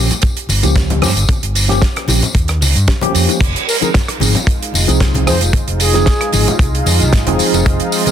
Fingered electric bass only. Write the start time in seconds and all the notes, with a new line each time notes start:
0.49 G1
0.63 C#2
1.02 G2
1.16 G1
1.29 muted fingered electric bass stroke
1.43 G1
2.08 A#1
2.35 D#2
2.61 C#2
2.76 G2
3.14 F2
3.41 F1
4.20 G#1
4.73 F1
4.88 C2
5.27 F2
5.41 F1
5.53 muted fingered electric bass stroke
5.68 F1
6.33 G#1
6.59 C2
6.86 F2
7.01 C2
7.13 G#1
7.27 F1
7.39 muted fingered electric bass stroke
7.53 F1
7.66 F1